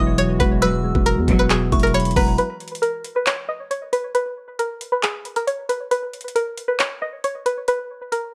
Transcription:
Already playing: 808-style bass E1, analog synth pad E3 G#3 F#4, synth keys F#3 G#3 B3 E4, synth pluck D#5, synth bell D#6
0.18 synth keys F#3, synth pluck C#5, closed hi-hat
0.39 808-style bass E1, synth keys F#4, synth pluck B4, kick, closed hi-hat
0.62 string section B1 G#2 F#3, synth keys F#3, synth pluck B4, synth bell E6, closed hi-hat
0.84 synth keys G#3
0.95 808-style bass E1, kick
1.06 synth pluck A#4, closed hi-hat
1.17 808-style bass E2
1.28 808-style bass E1, string section B1 G#2 F#3, synth keys B3, kick, closed hi-hat
1.39 synth pluck B4
1.50 synth keys F#3, synth pluck G#4, clap, closed hi-hat
1.72 808-style bass E1, synth keys E4, synth bell C#6, kick, closed hi-hat
1.80 synth pluck A#4, closed hi-hat
1.87 closed hi-hat
1.94 synth keys F#3, synth pluck C#5, synth bell B5, closed hi-hat
2.00 closed hi-hat
2.05 closed hi-hat
2.11 closed hi-hat
2.16 808-style bass E1, synth keys F#4, synth pluck B4, synth bell A#5, kick, open hi-hat
2.38 synth pluck B4, closed hi-hat
2.60 closed hi-hat
2.68 closed hi-hat
2.75 closed hi-hat
2.82 synth pluck A#4, closed hi-hat
3.04 closed hi-hat
3.16 synth pluck B4
3.26 synth pluck C#5, clap, closed hi-hat
3.49 synth pluck D#5
3.71 synth pluck C#5, closed hi-hat
3.93 synth pluck B4, closed hi-hat
4.15 synth pluck B4, closed hi-hat
4.59 synth pluck A#4, closed hi-hat
4.81 closed hi-hat
4.92 synth pluck B4
5.03 synth pluck G#4, clap, closed hi-hat
5.25 closed hi-hat
5.36 synth pluck A#4, closed hi-hat
5.47 synth pluck C#5, closed hi-hat
5.69 synth pluck B4, closed hi-hat
5.91 synth pluck B4, closed hi-hat
6.13 closed hi-hat
6.21 closed hi-hat
6.28 closed hi-hat
6.35 synth pluck A#4, closed hi-hat
6.58 closed hi-hat
6.68 synth pluck B4
6.79 synth pluck C#5, clap, closed hi-hat
7.02 synth pluck D#5
7.24 synth pluck C#5, closed hi-hat
7.46 synth pluck B4, closed hi-hat
7.68 synth pluck B4, closed hi-hat
8.12 synth pluck A#4, closed hi-hat

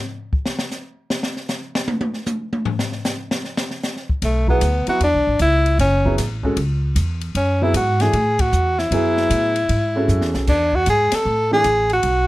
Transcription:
0.33 kick
0.46 snare
0.59 snare
0.71 snare, hi-hat pedal
1.10 snare
1.23 snare
1.37 snare
1.49 snare, hi-hat pedal
1.75 snare
1.88 high tom
2.01 high tom
2.14 snare
2.26 hi-hat pedal, high tom
2.53 high tom
2.65 floor tom
2.79 snare
2.92 snare
3.05 snare, hi-hat pedal
3.31 snare
3.45 snare
3.57 snare
3.71 snare
3.83 snare, hi-hat pedal
3.97 snare
4.09 kick
4.22 upright bass B1, tenor saxophone A3, snare, ride
4.48 grand piano F#3 B3 E4 G#4, tenor saxophone B3, kick
4.61 upright bass D2, hi-hat pedal, ride
4.87 grand piano F#3 B3 E4 F#4, tenor saxophone F#4, muted upright bass stroke, ride
5.00 upright bass E2, tenor saxophone D4, ride
5.14 upright bass B1
5.27 upright bass A1
5.39 upright bass C#2, tenor saxophone E4, hi-hat pedal, ride
5.66 ride
5.79 upright bass F#1, tenor saxophone C#4, snare, ride
6.05 grand piano F#3 B3 E4 G#4, kick
6.18 upright bass A1, snare, hi-hat pedal, ride
6.43 grand piano G#3 C#4 F#4 A4, kick
6.57 upright bass C#2, ride
6.95 upright bass E2, hi-hat pedal, ride
7.21 ride
7.35 upright bass F#2, tenor saxophone C#4, ride
7.62 grand piano F#3 B3 E4 G#4, tenor saxophone E4
7.74 upright bass G#2, tenor saxophone F#4, hi-hat pedal, ride
8.00 grand piano E3 A3 D4 F#4, tenor saxophone G#4, snare, ride
8.13 upright bass A2, ride
8.39 tenor saxophone F#4, kick, ride
8.52 upright bass E2, hi-hat pedal
8.79 tenor saxophone E4, snare
8.91 upright bass F#2, grand piano F#3 B3 E4 G#4, ride
9.17 snare
9.30 upright bass A2, hi-hat pedal, ride
9.56 ride
9.69 upright bass G#2, ride
9.95 grand piano C#4 F#4 G#4 A4
10.08 upright bass F#2, hi-hat pedal
10.21 upright bass E2, snare
10.34 upright bass B1, snare
10.47 upright bass E2, tenor saxophone D4, kick, snare, crash
10.73 tenor saxophone F#4, kick
10.86 upright bass G#2, tenor saxophone G#4, hi-hat pedal, ride
11.12 tenor saxophone A4, muted upright bass stroke, snare, ride
11.25 upright bass A2
11.51 grand piano E3 A3 D4 G#4, tenor saxophone G#4
11.64 upright bass A1, hi-hat pedal, ride
11.90 tenor saxophone F#4, ride
12.03 upright bass B1, ride

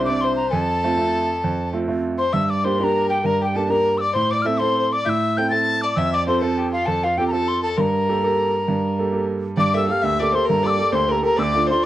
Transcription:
Already playing: grand piano C2, fiddle C5
0.05 grand piano C4 D4 E4, tin whistle D6
0.09 fiddle D5
0.21 fiddle C5, tin whistle C6
0.36 tin whistle A#5
0.50 grand piano F2, fiddle A4, tin whistle A5
0.84 grand piano A3 C4 F4
0.97 grand piano A3 C4 F4
1.44 grand piano F2
1.73 grand piano A3 C4 F4
1.88 grand piano A3 C4 F4
2.18 fiddle C5, tin whistle C6
2.33 grand piano G2, fiddle E5, tin whistle E6
2.50 fiddle D5, tin whistle D6
2.64 grand piano A#3 D4 G4, fiddle C5, tin whistle C6
2.78 grand piano A#3 D4 G4, fiddle A#4, tin whistle C6
2.84 tin whistle A#5
3.10 fiddle G4, tin whistle G5
3.22 grand piano G2, fiddle A#4, tin whistle A#5
3.41 fiddle G4, tin whistle G5
3.55 grand piano A#3 D4 G4, fiddle A4, tin whistle A5
3.69 grand piano A#3 D4 G4, fiddle A#4, tin whistle A#5
3.98 fiddle D5, tin whistle D6 E6
4.13 grand piano A2, fiddle C5, tin whistle C6
4.31 fiddle D5, tin whistle D6
4.42 grand piano C4 E4 A4, tin whistle F6
4.46 fiddle E5, tin whistle E6
4.59 grand piano C4 E4 A4, fiddle C5, tin whistle C6
4.78 fiddle C5
4.93 fiddle D5, tin whistle D6
5.05 grand piano A2, fiddle E5, tin whistle G6
5.09 tin whistle E6
5.37 grand piano C4 E4 A4, fiddle G5, tin whistle G6
5.50 grand piano C4 E4 A4, fiddle A5, tin whistle A6
5.81 fiddle D5, tin whistle D6
5.96 grand piano F2, fiddle E5, tin whistle E6
6.13 fiddle D5, tin whistle D6
6.27 grand piano C4 F4 A4, fiddle C5, tin whistle C6
6.41 grand piano C4 F4 A4, fiddle A4, tin whistle A5
6.58 fiddle G4
6.72 fiddle F4, tin whistle F5
6.86 grand piano F2, fiddle A4, tin whistle A5
7.04 fiddle F4, tin whistle F5
7.17 grand piano C4 F4 A4, fiddle G4, tin whistle G5
7.28 fiddle A4, tin whistle A5 A#5
7.32 grand piano C4 F4 A4
7.48 tin whistle C6
7.63 fiddle A4, tin whistle A5
7.77 grand piano G2, fiddle A#4, tin whistle A#5 C6
8.09 grand piano A#3 G4 A4
8.24 grand piano A#3 G4 A4
8.68 grand piano G2
8.99 grand piano A#3 G4 A4
9.13 grand piano A#3 G4 A4
9.57 grand piano G2, fiddle D5, tin whistle D6
9.74 grand piano A#3 G4 A4, fiddle E5, tin whistle E6
9.88 grand piano A#3 G4 A4, fiddle F5, tin whistle F6
10.02 grand piano D2, fiddle E5, tin whistle E6
10.19 grand piano A#3 G4 A4, fiddle D5, tin whistle D6
10.32 grand piano A#3 G4 A4, fiddle C5, tin whistle C6
10.45 fiddle A#4
10.50 grand piano G2, tin whistle A#5
10.63 grand piano A#3 G4 A4, fiddle D5, tin whistle E6
10.70 tin whistle D6
10.78 grand piano A#3 G4 A4
10.92 grand piano D2, fiddle C5, tin whistle C6
11.08 grand piano A#3 G4 A4, fiddle A#4, tin whistle A#5
11.23 grand piano A#3 G4 A4, fiddle A#4, tin whistle A#5
11.37 grand piano D2, fiddle D5, tin whistle E6
11.43 tin whistle D6
11.54 grand piano D4 F4 A4
11.67 grand piano D4 F4, fiddle C5, tin whistle C6
11.71 grand piano A4

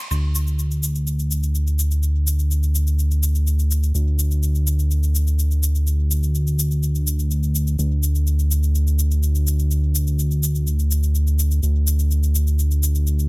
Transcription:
0.11 analog synth bass D2, shaker
0.35 shaker
0.47 shaker
0.59 shaker
0.71 shaker
0.83 shaker
0.95 shaker
1.07 shaker
1.19 shaker
1.31 shaker
1.43 shaker
1.55 shaker
1.67 shaker
1.79 shaker
1.91 shaker
2.03 shaker
2.27 shaker
2.39 shaker
2.51 shaker
2.63 shaker
2.75 shaker
2.87 shaker
2.99 shaker
3.11 shaker
3.23 shaker
3.35 shaker
3.47 shaker
3.59 shaker
3.71 shaker
3.83 shaker
3.95 analog synth bass D2, shaker
4.19 shaker
4.31 shaker
4.43 shaker
4.55 shaker
4.67 shaker
4.79 shaker
4.91 shaker
5.03 shaker
5.15 shaker
5.27 shaker
5.39 shaker
5.51 shaker
5.63 shaker
5.75 shaker
5.87 shaker
6.11 shaker
6.23 shaker
6.35 shaker
6.47 shaker
6.59 shaker
6.71 shaker
6.83 shaker
6.95 shaker
7.07 shaker
7.19 shaker
7.31 shaker
7.43 shaker
7.55 shaker
7.67 shaker
7.79 analog synth bass D2, shaker
8.03 shaker
8.15 shaker
8.27 shaker
8.39 shaker
8.51 shaker
8.63 shaker
8.75 shaker
8.87 shaker
8.99 shaker
9.11 shaker
9.23 shaker
9.35 shaker
9.47 shaker
9.59 shaker
9.71 shaker
9.95 shaker
10.07 shaker
10.19 shaker
10.31 shaker
10.43 shaker
10.55 shaker
10.67 shaker
10.79 shaker
10.91 shaker
11.03 shaker
11.15 shaker
11.27 shaker
11.39 shaker
11.51 shaker
11.63 analog synth bass D2, shaker
11.87 shaker
11.99 shaker
12.11 shaker
12.23 shaker
12.35 shaker
12.47 shaker
12.59 shaker
12.71 shaker
12.83 shaker
12.95 shaker
13.07 shaker
13.19 shaker

